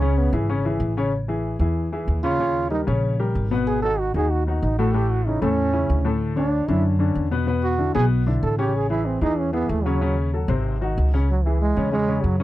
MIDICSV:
0, 0, Header, 1, 4, 480
1, 0, Start_track
1, 0, Key_signature, 4, "minor"
1, 0, Tempo, 317292
1, 1705, Time_signature, 4, 2, 24, 8
1, 18807, End_track
2, 0, Start_track
2, 0, Title_t, "Trombone"
2, 0, Program_c, 0, 57
2, 0, Note_on_c, 0, 61, 96
2, 274, Note_on_c, 0, 59, 81
2, 297, Note_off_c, 0, 61, 0
2, 510, Note_off_c, 0, 59, 0
2, 3383, Note_on_c, 0, 65, 109
2, 4054, Note_off_c, 0, 65, 0
2, 4096, Note_on_c, 0, 63, 93
2, 4243, Note_off_c, 0, 63, 0
2, 5553, Note_on_c, 0, 68, 92
2, 5773, Note_off_c, 0, 68, 0
2, 5782, Note_on_c, 0, 69, 115
2, 6046, Note_on_c, 0, 66, 96
2, 6069, Note_off_c, 0, 69, 0
2, 6276, Note_off_c, 0, 66, 0
2, 6291, Note_on_c, 0, 68, 100
2, 6521, Note_on_c, 0, 66, 90
2, 6543, Note_off_c, 0, 68, 0
2, 6753, Note_off_c, 0, 66, 0
2, 6761, Note_on_c, 0, 59, 59
2, 7000, Note_on_c, 0, 63, 80
2, 7004, Note_off_c, 0, 59, 0
2, 7233, Note_off_c, 0, 63, 0
2, 7242, Note_on_c, 0, 66, 86
2, 7464, Note_on_c, 0, 67, 94
2, 7486, Note_off_c, 0, 66, 0
2, 7721, Note_on_c, 0, 66, 90
2, 7744, Note_off_c, 0, 67, 0
2, 7959, Note_on_c, 0, 63, 83
2, 7982, Note_off_c, 0, 66, 0
2, 8193, Note_off_c, 0, 63, 0
2, 8206, Note_on_c, 0, 61, 97
2, 9336, Note_off_c, 0, 61, 0
2, 9647, Note_on_c, 0, 62, 92
2, 10116, Note_on_c, 0, 64, 87
2, 10138, Note_off_c, 0, 62, 0
2, 10351, Note_off_c, 0, 64, 0
2, 11546, Note_on_c, 0, 66, 96
2, 11993, Note_off_c, 0, 66, 0
2, 12028, Note_on_c, 0, 68, 106
2, 12172, Note_off_c, 0, 68, 0
2, 12756, Note_on_c, 0, 69, 95
2, 12975, Note_off_c, 0, 69, 0
2, 12988, Note_on_c, 0, 67, 102
2, 13244, Note_on_c, 0, 68, 100
2, 13267, Note_off_c, 0, 67, 0
2, 13450, Note_off_c, 0, 68, 0
2, 13459, Note_on_c, 0, 64, 100
2, 13703, Note_on_c, 0, 60, 79
2, 13726, Note_off_c, 0, 64, 0
2, 13945, Note_off_c, 0, 60, 0
2, 13955, Note_on_c, 0, 63, 104
2, 14199, Note_on_c, 0, 61, 88
2, 14222, Note_off_c, 0, 63, 0
2, 14412, Note_off_c, 0, 61, 0
2, 14421, Note_on_c, 0, 59, 93
2, 14665, Note_on_c, 0, 57, 82
2, 14688, Note_off_c, 0, 59, 0
2, 14879, Note_on_c, 0, 54, 89
2, 14902, Note_off_c, 0, 57, 0
2, 15372, Note_off_c, 0, 54, 0
2, 17102, Note_on_c, 0, 54, 88
2, 17309, Note_on_c, 0, 52, 82
2, 17332, Note_off_c, 0, 54, 0
2, 17547, Note_off_c, 0, 52, 0
2, 17571, Note_on_c, 0, 56, 99
2, 18006, Note_off_c, 0, 56, 0
2, 18029, Note_on_c, 0, 56, 108
2, 18514, Note_on_c, 0, 54, 92
2, 18536, Note_off_c, 0, 56, 0
2, 18735, Note_off_c, 0, 54, 0
2, 18744, Note_on_c, 0, 52, 77
2, 18807, Note_off_c, 0, 52, 0
2, 18807, End_track
3, 0, Start_track
3, 0, Title_t, "Grand piano"
3, 0, Program_c, 1, 0
3, 24, Note_on_c, 1, 49, 86
3, 30, Note_on_c, 1, 61, 83
3, 35, Note_on_c, 1, 73, 86
3, 418, Note_off_c, 1, 49, 0
3, 422, Note_off_c, 1, 61, 0
3, 425, Note_off_c, 1, 73, 0
3, 498, Note_on_c, 1, 52, 74
3, 501, Note_on_c, 1, 64, 75
3, 501, Note_on_c, 1, 68, 78
3, 698, Note_off_c, 1, 52, 0
3, 700, Note_off_c, 1, 64, 0
3, 700, Note_off_c, 1, 68, 0
3, 748, Note_on_c, 1, 49, 79
3, 748, Note_on_c, 1, 61, 81
3, 748, Note_on_c, 1, 73, 76
3, 944, Note_off_c, 1, 49, 0
3, 944, Note_off_c, 1, 61, 0
3, 944, Note_off_c, 1, 73, 0
3, 985, Note_on_c, 1, 52, 79
3, 987, Note_on_c, 1, 64, 73
3, 994, Note_on_c, 1, 68, 75
3, 1379, Note_off_c, 1, 52, 0
3, 1380, Note_off_c, 1, 64, 0
3, 1384, Note_off_c, 1, 68, 0
3, 1470, Note_on_c, 1, 61, 79
3, 1473, Note_on_c, 1, 49, 85
3, 1482, Note_on_c, 1, 73, 83
3, 1665, Note_off_c, 1, 61, 0
3, 1667, Note_off_c, 1, 49, 0
3, 1672, Note_off_c, 1, 73, 0
3, 1940, Note_on_c, 1, 52, 73
3, 1944, Note_on_c, 1, 64, 70
3, 1951, Note_on_c, 1, 68, 74
3, 2336, Note_off_c, 1, 52, 0
3, 2338, Note_off_c, 1, 64, 0
3, 2342, Note_off_c, 1, 68, 0
3, 2418, Note_on_c, 1, 52, 72
3, 2430, Note_on_c, 1, 64, 73
3, 2433, Note_on_c, 1, 68, 75
3, 2815, Note_off_c, 1, 52, 0
3, 2822, Note_off_c, 1, 64, 0
3, 2823, Note_off_c, 1, 68, 0
3, 2908, Note_on_c, 1, 52, 71
3, 2914, Note_on_c, 1, 64, 75
3, 2918, Note_on_c, 1, 68, 72
3, 3301, Note_off_c, 1, 52, 0
3, 3304, Note_off_c, 1, 64, 0
3, 3306, Note_off_c, 1, 68, 0
3, 3382, Note_on_c, 1, 49, 86
3, 3390, Note_on_c, 1, 61, 83
3, 3396, Note_on_c, 1, 73, 79
3, 3580, Note_off_c, 1, 49, 0
3, 3585, Note_off_c, 1, 61, 0
3, 3589, Note_off_c, 1, 73, 0
3, 3627, Note_on_c, 1, 49, 80
3, 3634, Note_on_c, 1, 73, 81
3, 3636, Note_on_c, 1, 61, 74
3, 4020, Note_off_c, 1, 49, 0
3, 4024, Note_off_c, 1, 73, 0
3, 4026, Note_off_c, 1, 61, 0
3, 4094, Note_on_c, 1, 67, 64
3, 4095, Note_on_c, 1, 55, 64
3, 4107, Note_on_c, 1, 70, 61
3, 4296, Note_off_c, 1, 55, 0
3, 4296, Note_off_c, 1, 67, 0
3, 4303, Note_off_c, 1, 70, 0
3, 4338, Note_on_c, 1, 49, 84
3, 4342, Note_on_c, 1, 61, 79
3, 4350, Note_on_c, 1, 73, 84
3, 4735, Note_off_c, 1, 49, 0
3, 4737, Note_off_c, 1, 61, 0
3, 4742, Note_off_c, 1, 73, 0
3, 4834, Note_on_c, 1, 67, 78
3, 4836, Note_on_c, 1, 55, 72
3, 4839, Note_on_c, 1, 70, 71
3, 5225, Note_off_c, 1, 67, 0
3, 5226, Note_off_c, 1, 55, 0
3, 5227, Note_off_c, 1, 70, 0
3, 5309, Note_on_c, 1, 47, 85
3, 5313, Note_on_c, 1, 59, 86
3, 5316, Note_on_c, 1, 71, 83
3, 5702, Note_off_c, 1, 47, 0
3, 5704, Note_off_c, 1, 59, 0
3, 5706, Note_off_c, 1, 71, 0
3, 5799, Note_on_c, 1, 51, 78
3, 5802, Note_on_c, 1, 63, 76
3, 5811, Note_on_c, 1, 66, 75
3, 6188, Note_off_c, 1, 51, 0
3, 6189, Note_off_c, 1, 63, 0
3, 6194, Note_off_c, 1, 66, 0
3, 6282, Note_on_c, 1, 51, 77
3, 6286, Note_on_c, 1, 63, 77
3, 6291, Note_on_c, 1, 66, 78
3, 6669, Note_off_c, 1, 51, 0
3, 6672, Note_off_c, 1, 63, 0
3, 6675, Note_off_c, 1, 66, 0
3, 6765, Note_on_c, 1, 51, 78
3, 6777, Note_on_c, 1, 66, 76
3, 6778, Note_on_c, 1, 63, 77
3, 7151, Note_off_c, 1, 51, 0
3, 7158, Note_off_c, 1, 66, 0
3, 7159, Note_off_c, 1, 63, 0
3, 7242, Note_on_c, 1, 45, 84
3, 7246, Note_on_c, 1, 57, 81
3, 7251, Note_on_c, 1, 69, 89
3, 7433, Note_off_c, 1, 45, 0
3, 7435, Note_off_c, 1, 57, 0
3, 7438, Note_off_c, 1, 69, 0
3, 7475, Note_on_c, 1, 45, 77
3, 7477, Note_on_c, 1, 57, 75
3, 7483, Note_on_c, 1, 69, 80
3, 7865, Note_off_c, 1, 45, 0
3, 7866, Note_off_c, 1, 57, 0
3, 7870, Note_off_c, 1, 69, 0
3, 7961, Note_on_c, 1, 49, 60
3, 7970, Note_on_c, 1, 61, 61
3, 7979, Note_on_c, 1, 64, 63
3, 8152, Note_off_c, 1, 49, 0
3, 8157, Note_off_c, 1, 61, 0
3, 8162, Note_off_c, 1, 64, 0
3, 8192, Note_on_c, 1, 57, 80
3, 8195, Note_on_c, 1, 45, 84
3, 8205, Note_on_c, 1, 69, 82
3, 8584, Note_off_c, 1, 57, 0
3, 8586, Note_off_c, 1, 45, 0
3, 8591, Note_off_c, 1, 69, 0
3, 8665, Note_on_c, 1, 49, 71
3, 8670, Note_on_c, 1, 61, 73
3, 8671, Note_on_c, 1, 64, 73
3, 9059, Note_off_c, 1, 49, 0
3, 9062, Note_off_c, 1, 61, 0
3, 9063, Note_off_c, 1, 64, 0
3, 9146, Note_on_c, 1, 45, 83
3, 9150, Note_on_c, 1, 57, 78
3, 9157, Note_on_c, 1, 69, 84
3, 9540, Note_off_c, 1, 45, 0
3, 9542, Note_off_c, 1, 57, 0
3, 9547, Note_off_c, 1, 69, 0
3, 9620, Note_on_c, 1, 50, 72
3, 9630, Note_on_c, 1, 73, 75
3, 9634, Note_on_c, 1, 62, 77
3, 10016, Note_off_c, 1, 50, 0
3, 10022, Note_off_c, 1, 73, 0
3, 10025, Note_off_c, 1, 62, 0
3, 10112, Note_on_c, 1, 50, 73
3, 10114, Note_on_c, 1, 61, 70
3, 10120, Note_on_c, 1, 62, 77
3, 10504, Note_off_c, 1, 50, 0
3, 10505, Note_off_c, 1, 61, 0
3, 10508, Note_off_c, 1, 62, 0
3, 10573, Note_on_c, 1, 50, 80
3, 10584, Note_on_c, 1, 61, 74
3, 10587, Note_on_c, 1, 62, 78
3, 10973, Note_off_c, 1, 50, 0
3, 10979, Note_off_c, 1, 61, 0
3, 10981, Note_off_c, 1, 62, 0
3, 11061, Note_on_c, 1, 47, 83
3, 11066, Note_on_c, 1, 59, 87
3, 11070, Note_on_c, 1, 71, 88
3, 11260, Note_off_c, 1, 47, 0
3, 11263, Note_off_c, 1, 59, 0
3, 11266, Note_off_c, 1, 71, 0
3, 11295, Note_on_c, 1, 47, 78
3, 11303, Note_on_c, 1, 59, 82
3, 11311, Note_on_c, 1, 71, 86
3, 11694, Note_off_c, 1, 47, 0
3, 11699, Note_off_c, 1, 59, 0
3, 11703, Note_off_c, 1, 71, 0
3, 11775, Note_on_c, 1, 62, 64
3, 11776, Note_on_c, 1, 50, 66
3, 11778, Note_on_c, 1, 64, 63
3, 11977, Note_off_c, 1, 50, 0
3, 11977, Note_off_c, 1, 62, 0
3, 11979, Note_off_c, 1, 64, 0
3, 12020, Note_on_c, 1, 59, 85
3, 12024, Note_on_c, 1, 47, 91
3, 12027, Note_on_c, 1, 71, 87
3, 12417, Note_off_c, 1, 59, 0
3, 12419, Note_off_c, 1, 47, 0
3, 12421, Note_off_c, 1, 71, 0
3, 12502, Note_on_c, 1, 62, 77
3, 12503, Note_on_c, 1, 50, 76
3, 12515, Note_on_c, 1, 64, 77
3, 12898, Note_off_c, 1, 50, 0
3, 12898, Note_off_c, 1, 62, 0
3, 12905, Note_off_c, 1, 64, 0
3, 12984, Note_on_c, 1, 49, 78
3, 12990, Note_on_c, 1, 61, 82
3, 12995, Note_on_c, 1, 73, 89
3, 13379, Note_off_c, 1, 49, 0
3, 13382, Note_off_c, 1, 61, 0
3, 13385, Note_off_c, 1, 73, 0
3, 13464, Note_on_c, 1, 52, 81
3, 13468, Note_on_c, 1, 64, 78
3, 13474, Note_on_c, 1, 68, 77
3, 13858, Note_off_c, 1, 52, 0
3, 13861, Note_off_c, 1, 64, 0
3, 13864, Note_off_c, 1, 68, 0
3, 13940, Note_on_c, 1, 64, 72
3, 13941, Note_on_c, 1, 52, 80
3, 13950, Note_on_c, 1, 68, 78
3, 14336, Note_off_c, 1, 64, 0
3, 14337, Note_off_c, 1, 52, 0
3, 14342, Note_off_c, 1, 68, 0
3, 14412, Note_on_c, 1, 52, 74
3, 14420, Note_on_c, 1, 64, 72
3, 14425, Note_on_c, 1, 68, 72
3, 14811, Note_off_c, 1, 52, 0
3, 14816, Note_off_c, 1, 64, 0
3, 14818, Note_off_c, 1, 68, 0
3, 14910, Note_on_c, 1, 49, 86
3, 14916, Note_on_c, 1, 61, 79
3, 14922, Note_on_c, 1, 73, 86
3, 15105, Note_off_c, 1, 49, 0
3, 15108, Note_off_c, 1, 61, 0
3, 15112, Note_off_c, 1, 73, 0
3, 15146, Note_on_c, 1, 49, 86
3, 15155, Note_on_c, 1, 61, 87
3, 15158, Note_on_c, 1, 73, 83
3, 15539, Note_off_c, 1, 49, 0
3, 15544, Note_off_c, 1, 61, 0
3, 15546, Note_off_c, 1, 73, 0
3, 15634, Note_on_c, 1, 54, 70
3, 15639, Note_on_c, 1, 66, 65
3, 15641, Note_on_c, 1, 69, 66
3, 15827, Note_off_c, 1, 54, 0
3, 15830, Note_off_c, 1, 66, 0
3, 15831, Note_off_c, 1, 69, 0
3, 15862, Note_on_c, 1, 48, 88
3, 15873, Note_on_c, 1, 72, 86
3, 15875, Note_on_c, 1, 60, 87
3, 16256, Note_off_c, 1, 48, 0
3, 16263, Note_off_c, 1, 72, 0
3, 16264, Note_off_c, 1, 60, 0
3, 16355, Note_on_c, 1, 51, 79
3, 16365, Note_on_c, 1, 66, 83
3, 16367, Note_on_c, 1, 63, 83
3, 16745, Note_off_c, 1, 51, 0
3, 16750, Note_off_c, 1, 66, 0
3, 16752, Note_off_c, 1, 63, 0
3, 16848, Note_on_c, 1, 49, 79
3, 16849, Note_on_c, 1, 61, 85
3, 16852, Note_on_c, 1, 73, 80
3, 17035, Note_off_c, 1, 49, 0
3, 17036, Note_off_c, 1, 61, 0
3, 17038, Note_off_c, 1, 73, 0
3, 17333, Note_on_c, 1, 64, 68
3, 17336, Note_on_c, 1, 52, 71
3, 17346, Note_on_c, 1, 68, 67
3, 17716, Note_off_c, 1, 64, 0
3, 17717, Note_off_c, 1, 52, 0
3, 17723, Note_off_c, 1, 68, 0
3, 17804, Note_on_c, 1, 61, 78
3, 17805, Note_on_c, 1, 49, 83
3, 17811, Note_on_c, 1, 73, 76
3, 17993, Note_off_c, 1, 61, 0
3, 17994, Note_off_c, 1, 49, 0
3, 17998, Note_off_c, 1, 73, 0
3, 18047, Note_on_c, 1, 49, 76
3, 18051, Note_on_c, 1, 61, 76
3, 18055, Note_on_c, 1, 73, 75
3, 18235, Note_off_c, 1, 49, 0
3, 18237, Note_off_c, 1, 61, 0
3, 18240, Note_off_c, 1, 73, 0
3, 18274, Note_on_c, 1, 61, 77
3, 18276, Note_on_c, 1, 49, 83
3, 18285, Note_on_c, 1, 73, 75
3, 18664, Note_off_c, 1, 61, 0
3, 18666, Note_off_c, 1, 49, 0
3, 18671, Note_off_c, 1, 73, 0
3, 18756, Note_on_c, 1, 49, 82
3, 18758, Note_on_c, 1, 61, 83
3, 18761, Note_on_c, 1, 73, 77
3, 18807, Note_off_c, 1, 49, 0
3, 18807, Note_off_c, 1, 61, 0
3, 18807, Note_off_c, 1, 73, 0
3, 18807, End_track
4, 0, Start_track
4, 0, Title_t, "Upright bass"
4, 0, Program_c, 2, 32
4, 0, Note_on_c, 2, 37, 99
4, 419, Note_off_c, 2, 37, 0
4, 493, Note_on_c, 2, 32, 91
4, 1168, Note_off_c, 2, 32, 0
4, 1208, Note_on_c, 2, 33, 91
4, 2332, Note_off_c, 2, 33, 0
4, 2411, Note_on_c, 2, 40, 88
4, 3087, Note_off_c, 2, 40, 0
4, 3141, Note_on_c, 2, 39, 86
4, 4259, Note_off_c, 2, 39, 0
4, 4350, Note_on_c, 2, 34, 86
4, 5018, Note_off_c, 2, 34, 0
4, 5071, Note_on_c, 2, 32, 88
4, 6184, Note_off_c, 2, 32, 0
4, 6267, Note_on_c, 2, 39, 89
4, 6936, Note_off_c, 2, 39, 0
4, 6996, Note_on_c, 2, 33, 93
4, 8107, Note_off_c, 2, 33, 0
4, 8196, Note_on_c, 2, 40, 84
4, 8862, Note_off_c, 2, 40, 0
4, 8917, Note_on_c, 2, 38, 93
4, 10028, Note_off_c, 2, 38, 0
4, 10110, Note_on_c, 2, 42, 87
4, 10778, Note_off_c, 2, 42, 0
4, 10821, Note_on_c, 2, 40, 89
4, 11939, Note_off_c, 2, 40, 0
4, 12031, Note_on_c, 2, 35, 89
4, 12698, Note_off_c, 2, 35, 0
4, 12747, Note_on_c, 2, 33, 95
4, 13862, Note_off_c, 2, 33, 0
4, 13940, Note_on_c, 2, 40, 84
4, 14612, Note_off_c, 2, 40, 0
4, 14663, Note_on_c, 2, 39, 96
4, 15779, Note_off_c, 2, 39, 0
4, 15856, Note_on_c, 2, 32, 95
4, 16529, Note_off_c, 2, 32, 0
4, 16604, Note_on_c, 2, 37, 92
4, 17710, Note_off_c, 2, 37, 0
4, 17797, Note_on_c, 2, 40, 84
4, 18462, Note_off_c, 2, 40, 0
4, 18514, Note_on_c, 2, 42, 88
4, 18807, Note_off_c, 2, 42, 0
4, 18807, End_track
0, 0, End_of_file